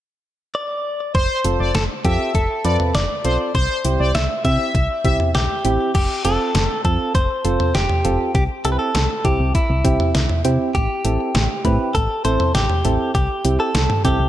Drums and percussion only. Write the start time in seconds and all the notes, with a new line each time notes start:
1.15 kick, closed hi-hat
1.45 closed hi-hat
1.75 snare, closed hi-hat
2.05 kick, closed hi-hat
2.35 kick, closed hi-hat
2.65 closed hi-hat
2.80 mid tom
2.95 snare, closed hi-hat
3.25 closed hi-hat
3.55 kick, closed hi-hat
3.85 closed hi-hat
4.15 snare, closed hi-hat
4.45 kick, closed hi-hat
4.75 kick, closed hi-hat
5.05 kick, closed hi-hat
5.20 mid tom
5.35 snare, closed hi-hat
5.65 closed hi-hat
5.95 kick, closed hi-hat, crash
6.25 closed hi-hat
6.55 snare, closed hi-hat
6.85 kick, closed hi-hat
7.15 kick, closed hi-hat
7.45 closed hi-hat
7.60 mid tom
7.75 snare, closed hi-hat
7.89 mid tom
8.05 closed hi-hat
8.35 kick, closed hi-hat
8.65 closed hi-hat
8.95 snare, closed hi-hat
9.25 kick, closed hi-hat
9.55 kick, closed hi-hat
9.85 kick, closed hi-hat
10.00 mid tom
10.15 snare, closed hi-hat
10.29 mid tom
10.45 closed hi-hat
10.75 kick, closed hi-hat
11.05 closed hi-hat
11.35 snare, closed hi-hat
11.65 kick, closed hi-hat
11.95 kick, closed hi-hat
12.25 closed hi-hat
12.40 mid tom
12.55 snare, closed hi-hat
12.70 mid tom
12.85 closed hi-hat
13.15 kick, closed hi-hat
13.45 closed hi-hat
13.75 snare, closed hi-hat
13.90 mid tom
14.05 kick, closed hi-hat